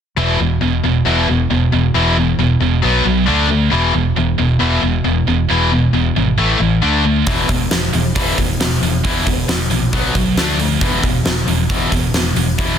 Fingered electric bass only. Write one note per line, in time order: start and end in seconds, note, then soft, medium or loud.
0.17 0.37 E1 medium
0.40 0.60 E1 medium
0.62 0.82 E1 medium
0.85 1.04 E1 medium
1.06 1.26 E1 medium
1.29 1.49 E1 medium
1.51 1.71 E1 medium
1.73 1.93 E1 medium
1.95 2.35 E1 medium
2.39 2.59 E1 medium
2.61 2.81 E1 medium
2.83 3.03 B1 medium
3.05 3.25 B1 medium
3.28 3.68 D2 medium
3.72 3.92 E1 medium
3.95 4.15 E1 medium
4.17 4.37 E1 medium
4.39 4.59 E1 medium
4.61 4.81 E1 medium
4.83 5.03 E1 medium
5.05 5.25 E1 medium
5.27 5.47 E1 medium
5.50 5.89 E1 medium
5.93 6.14 E1 medium
6.16 6.36 G#1 medium
6.38 6.58 A1 medium
6.60 6.80 A1 medium
6.83 7.22 D2 medium
7.49 7.69 E1 medium
7.70 7.91 E1 medium
7.93 8.13 E1 medium
8.16 8.36 E1 medium
8.38 8.58 E1 medium
8.59 8.79 E1 medium
8.82 9.02 E1 medium
9.05 9.44 E1 medium
9.49 9.69 E1 medium
9.71 9.91 A#1 medium
9.93 10.13 B1 medium
10.15 10.35 B1 medium
10.36 10.76 D2 medium
10.81 11.01 E1 medium
11.04 11.24 E1 medium
11.25 11.45 E1 medium
11.47 11.67 E1 medium
11.70 11.90 E1 medium
11.92 12.12 E1 medium
12.13 12.33 E1 medium
12.36 12.56 E1 medium
12.59 12.79 E1 medium